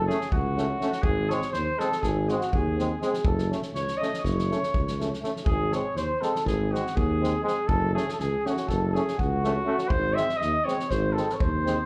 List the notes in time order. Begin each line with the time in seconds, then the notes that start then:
0.07 A3 C#4 G#4, snare
0.21 snare
0.31 C#2 F#4, kick
0.57 A3 C#4, snare
0.80 A3 C#4, snare
0.92 snare
1.03 G#1 G#4, kick
1.30 G#3 C4 C#5, snare
1.41 snare
1.53 D#2 C5, snare
1.78 G#3 C4 A4, snare
1.83 A4
1.92 snare
2.02 G#1 G#4, kick, snare
2.08 G#4
2.28 G#3 C4 F#4, snare
2.35 F#4
2.41 snare
2.52 D#2 G#4, kick
2.58 G#4
2.78 G#3 C4, snare
3.02 G#3 C4 G#4, snare
3.07 G#4
3.14 snare
3.25 F#1 A4, kick
3.29 A4
3.38 snare
3.51 A3 C#4, snare
3.62 snare
3.73 C#2 C#5, snare
3.88 snare
3.97 A3 C#4 D#5
4.02 snare
4.14 snare
4.20 F#1 C#5
4.25 kick, snare
4.39 snare
4.50 A3 C#4, snare
4.63 snare
4.74 C#2, kick
4.88 snare
5.00 A3 C#4, snare
5.14 snare
5.22 A3 C#4, snare
5.36 snare
5.45 G#1 G#4, kick
5.72 G#3 C4 C#5, snare
5.95 D#2 C5, snare
6.21 G#3 C4 A4, snare
6.36 snare
6.45 G#1 G#4, kick, snare
6.72 G#3 C4 F#4, snare
6.87 snare
6.95 D#2 G#4, kick
7.20 G#3 C4, snare
7.43 G#3 C4 G#4
7.48 snare
7.67 F#1 A4, kick
7.94 A3 C#4 G#4, snare
8.09 A4, snare
8.14 A4
8.19 C#2 G#4, snare
8.45 A3 C#4 F#4, snare
8.57 snare
8.68 F#1 A4, kick, snare
8.94 A3 C#4 G#4, snare
9.08 snare
9.18 C#2 F#4, kick
9.44 A3 C#4, snare
9.66 A3 C#4
9.78 snare
9.89 G#1 C5, kick
10.15 G#3 C4 E5, snare
10.29 snare
10.37 D#2 D#5
10.41 D#5, snare
10.65 G#3 C4 C#5, snare
10.80 snare
10.90 G#1 C5, kick, snare
11.13 C4 A4
11.17 G#3 A4, snare
11.29 C#5, snare
11.36 C#5
11.40 D#2 C5, kick
11.65 G#3 C4, snare